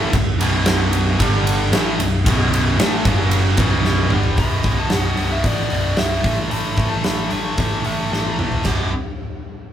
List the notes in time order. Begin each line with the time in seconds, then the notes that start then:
Already playing: A1 A2 E3 A3
0.13 B0 B1 F#2, kick, ride
0.38 B0 B1 F#2, ride
0.43 B2
0.66 snare, ride
0.93 ride
1.20 G1 G2 D3 G3, kick, ride
1.47 ride
1.72 A1 A2 E3 A3, snare, ride
1.99 B0 B1 F#2, ride
2.26 B0 B1 F#2 B2, kick, ride
2.54 ride
2.79 A1 A2 E3 A3, snare, ride
3.05 F#1 F#2 C#3 F#3, kick, ride
3.31 ride
3.57 B0 B1 F#2 B2, kick, ride
3.85 snare
4.10 G1 G2 D3 G3, mid tom
4.23 floor tom
4.37 B0 B1 F#2 B2 B5, kick, open hi-hat
4.63 B0 B1 F#2 B2, kick, open hi-hat
4.79 A5
4.90 B0 B1 F#2 B2 F#5, snare, open hi-hat
5.17 B0 B1 F#2 B2, open hi-hat
5.32 E5
5.43 A1 B1 F#2 B2 D5, kick, open hi-hat
5.70 B0 B1 F#2 B2, open hi-hat
5.97 B0 B1 F#2 B2 E5, snare, open hi-hat
6.24 A1 A2 E3 A3, kick, open hi-hat
6.51 A1 A2 E3 A3 B5, open hi-hat
6.77 A1 A2 E3 A3, kick, open hi-hat
6.90 A5
7.03 A1 A2 E3 A3 B5, snare, open hi-hat
7.30 A1 A2 E3 A3 C#6, open hi-hat
7.58 A1 A2 E3 A3, kick, open hi-hat
7.85 A1 A2 E3 A3, open hi-hat
8.11 A1 A2 E3 A3, snare
8.25 high tom
8.38 A#1 A2 E3 A3, mid tom
8.52 floor tom
8.65 B0 B1 F#2 B2 D6, kick, snare, crash